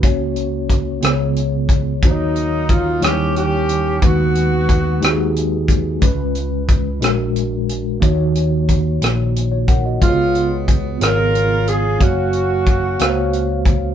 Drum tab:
HH |xxxxxx|xxxxxx|xxxxxx|xxxxxx|
SD |---r--|---r--|---r--|---r--|
BD |o-o--o|o-o---|o-o--o|o-o---|

HH |xxxxxx|xxxxxx|xxxxxx|
SD |---r--|---r--|---r--|
BD |o-o--o|o-o---|o-o--o|